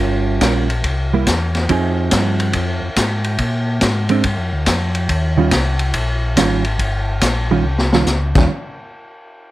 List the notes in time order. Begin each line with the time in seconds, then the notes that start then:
Already playing: G3 C#4 F4 A#4
0.00 G1
0.41 A#1 G3 C#4 F4 A#4, kick, snare, hi-hat pedal, ride
0.70 ride
0.84 C2, kick, ride
1.14 G3 A#3 E4
1.27 E2, kick, snare, hi-hat pedal, ride
1.55 snare, ride
1.69 F2 F3 C4 D#4 G#4, kick, ride
2.11 G2, kick, snare, hi-hat pedal, ride
2.40 ride
2.53 F2, kick, ride
2.83 F2
2.96 G#2, kick, snare, hi-hat pedal, ride
3.24 ride
3.38 A#2, kick, ride
3.81 G#2, kick, snare, hi-hat pedal, ride
4.09 G#3 C4 D4, ride
4.24 G2, kick, ride
4.38 F2
4.53 D2
4.66 F2, kick, snare, hi-hat pedal, ride
4.95 ride
5.09 D#2, kick, ride
5.38 D#3 G3 C#4 F4
5.51 C2, kick, snare, hi-hat pedal, ride
5.79 ride
5.94 A#1, kick, ride
6.36 G#1 D#3 G3 C#4 F4, kick, snare, hi-hat pedal, ride
6.64 ride
6.78 G1, kick, ride
7.21 A#1, kick, snare, hi-hat pedal, ride
7.51 D#3 G3 C#4 F4
7.63 C2
7.78 snare
7.93 D#3 G3 C#4 F4, snare
8.06 C#2, snare, hi-hat pedal
8.35 D#2 D#3 G3 C#4 F4, kick, snare, crash